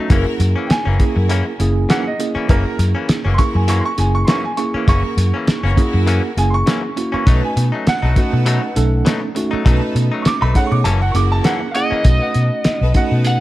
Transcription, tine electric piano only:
0.09 A#3 C#4 E4 G#4
0.99 A#3 C#4 E4 G#4
1.60 A#3 C#4 E4 G#4
2.19 A#3 C#4 E4 G#4
2.49 A#3 C#4 E4 G#4
3.38 A#3 C#4 E4 G#4
3.97 A#3 C#4 E4 G#4
4.58 A#3 C#4 E4 G#4
4.87 A#3 C#4 E4 G#4
5.76 A#3 C#4 E4 G#4
6.37 A#3 C#4 E4 G#4
6.96 A#3 C#4 E4 F#4
7.26 A3 C#4 D#4 F#4
8.16 A3 C#4 D#4 F#4
8.76 A3 C#4 D#4 A4
9.36 A3 C#4 D#4 F#4
9.65 A3 C#4 D#4 F#4
10.54 A3 C#4 D#4 G#4
11.15 A#3 C#4 E4 G#4
11.75 A#3 C#4 E4 G#4
12.05 A3 C#4 D#4 F#4
12.94 A3 C#4 D#4 F#4

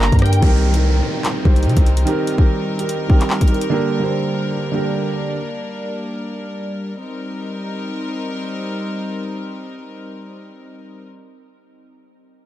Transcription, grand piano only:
Already playing: D3 A#3 G4 A#4
0.20 D3 A#3 G4
0.24 A#4
0.41 D#3 C4 G4
0.45 A#4
0.71 D#3 C4 G4
0.76 A#4
1.43 D#3 C4 G4
1.47 C5
2.05 D#3 C4 G4
2.09 A#4
2.37 D#3 C4 G4
2.41 A#4
2.77 D#3 C4 G4
2.81 A#4
3.08 D#3 C4 G4
3.12 A#4
3.48 D#3 C4 G4
3.52 A#4
3.70 D3 A#3 G4
3.74 A#4
4.00 D3 A#3 G4
4.04 C5
4.72 D3 A#3 G4
4.76 A#4

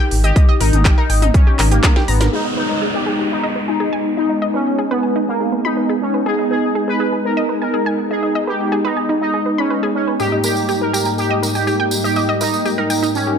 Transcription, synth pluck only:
0.24 D#5
0.36 D#5
0.49 D#5
0.61 A#4
0.85 G4
0.98 A#4
1.10 G5
1.22 D#4
1.47 G4
1.59 A#4
1.72 G4
1.84 A#4
1.96 G4
2.08 A#5
2.21 A#4
2.33 G#4
2.45 D#5
2.57 B4
2.82 G#4
2.94 G#4
3.06 G#4
3.19 G#4
3.44 D#5
3.56 B4
3.68 G#5
3.80 G#4
3.93 G#5
4.17 D#5
4.29 D#5
4.42 D#5
4.54 B4
4.79 G#4
4.91 B4
5.03 G#5
5.16 D#4
5.40 G#4
5.52 B4
5.65 B5
5.77 B4
5.89 G#4
6.14 B4
6.26 G#4
6.39 D#5
6.51 B4
6.75 G#4
6.88 G#4
7.00 G#4
7.12 G#4
7.37 D#5
7.49 B4
7.62 G#5
7.74 G#4
7.86 G#5
8.11 D#5
8.23 D#5
8.35 D#5
8.47 B4
8.72 G#4
8.85 B4
8.97 G#5
9.09 D#4
9.34 G#4
9.46 B4
9.58 B5
9.70 B4
9.83 G#4
10.08 B4
10.20 G4
10.32 D#5
10.44 A#4
10.69 G4
10.81 G4
10.93 G4
11.06 G4
11.30 D#5
11.43 A#4
11.55 G5
11.67 G4
11.80 G5
12.04 D#5
12.16 D#5
12.29 D#5
12.41 A#4
12.65 G4
12.78 A#4
12.90 G5
13.03 D#4
13.27 G4

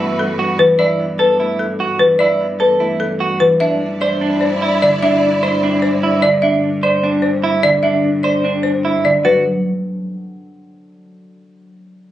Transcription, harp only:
Already playing: E3 B3 D4
0.00 A3
0.58 E3
0.99 B3
1.40 A3
2.00 E3
2.40 B3
2.80 A3
3.40 E3
3.80 D4
4.22 C4
4.82 D3
5.22 D4
5.62 C4
6.23 D3
6.63 D4
7.03 C4
7.63 D3
8.03 D4
8.44 C4
9.04 D3
9.24 F#3

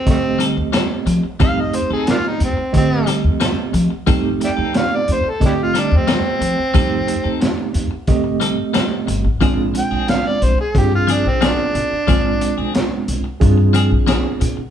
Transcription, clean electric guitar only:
0.23 muted clean electric guitar stroke
0.39 G3 C4 D#4 A4
0.57 muted clean electric guitar stroke
0.73 G3 C4 D#4 A4
1.06 muted clean electric guitar stroke
1.24 muted clean electric guitar stroke
1.40 G3 C4 D#4 A4
1.73 muted clean electric guitar stroke
1.90 C4 D#4 A4
2.07 muted clean electric guitar stroke
2.24 muted clean electric guitar stroke
2.57 muted clean electric guitar stroke
2.91 muted clean electric guitar stroke
3.06 G3 C4 D#4 A4
3.24 muted clean electric guitar stroke
3.40 G3 C4 D#4 A4
3.73 muted clean electric guitar stroke
3.90 muted clean electric guitar stroke
4.07 G3 C4 D#4 A4
4.41 muted clean electric guitar stroke
4.57 C4 D#4 A4
4.74 muted clean electric guitar stroke
4.91 muted clean electric guitar stroke
5.24 muted clean electric guitar stroke
5.58 muted clean electric guitar stroke
5.74 G3 C4 D#4 A4
5.91 muted clean electric guitar stroke
6.07 G3 C4 D#4 A4
6.41 muted clean electric guitar stroke
6.58 muted clean electric guitar stroke
6.74 G3 C4 D#4 A4
7.08 muted clean electric guitar stroke
7.24 C4 D#4 A4
7.41 muted clean electric guitar stroke
7.58 muted clean electric guitar stroke
7.91 muted clean electric guitar stroke
8.24 muted clean electric guitar stroke
8.40 G3 C4 D#4 A4
8.58 muted clean electric guitar stroke
8.74 G3 C4 D#4 A4
9.07 muted clean electric guitar stroke
9.25 muted clean electric guitar stroke
9.41 F3 C4 D4 G#4
9.74 muted clean electric guitar stroke
9.91 C4 D4 G#4
10.08 muted clean electric guitar stroke
10.25 muted clean electric guitar stroke
10.58 muted clean electric guitar stroke
10.92 muted clean electric guitar stroke
11.07 F3 C4 D4 G#4
11.25 muted clean electric guitar stroke
11.41 F3 C4 D4 G#4
11.75 muted clean electric guitar stroke
11.91 muted clean electric guitar stroke
12.07 F3 C4 D4 G#4
12.41 muted clean electric guitar stroke
12.58 C4 D4 G#4
12.74 muted clean electric guitar stroke
12.91 muted clean electric guitar stroke
13.24 muted clean electric guitar stroke
13.58 muted clean electric guitar stroke
13.73 F3 C4 D4 G#4
13.91 muted clean electric guitar stroke
14.07 F3 C4 D4 G#4
14.40 muted clean electric guitar stroke
14.57 muted clean electric guitar stroke

